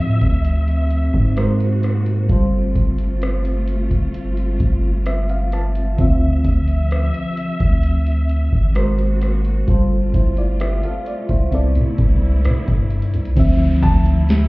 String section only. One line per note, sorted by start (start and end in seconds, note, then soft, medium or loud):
0.00 11.49 C3 medium
0.00 1.34 F3 medium
0.00 1.34 E5 medium
1.38 2.29 A#3 medium
1.38 2.29 F#4 medium
2.29 5.95 A3 medium
2.29 5.95 F4 medium
5.98 8.73 F3 medium
5.98 8.73 E5 medium
8.75 9.67 A#3 medium
8.75 9.67 F#4 medium
9.68 13.33 A3 medium
9.68 11.51 F4 medium
11.52 13.35 D3 medium
11.52 13.35 B3 medium
11.52 13.35 E4 medium
13.37 14.48 C3 medium
13.37 14.48 F3 medium
13.37 14.48 E4 medium